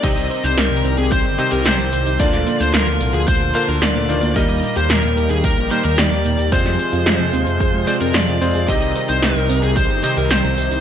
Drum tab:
CC |x---------------|----------------|----------------|----------------|
HH |xxxxx-xxx-xxxxxx|xxxxx-xxx-xxxxxx|xxxxx-xxx-xxxxxx|xxxxx-xxx-xxxxxx|
TB |----------------|----------------|----------------|----------------|
SD |----o-------o---|-o--o-------o---|----o-------o---|-o--o-------o---|
BD |o-------o-------|o-------o-------|o-------o-------|o-------o-------|

CC |----------------|
HH |xxxxx-oxx-xxxxox|
TB |xxxxxxxxxxxxxxxx|
SD |----o-------o---|
BD |o-------o-------|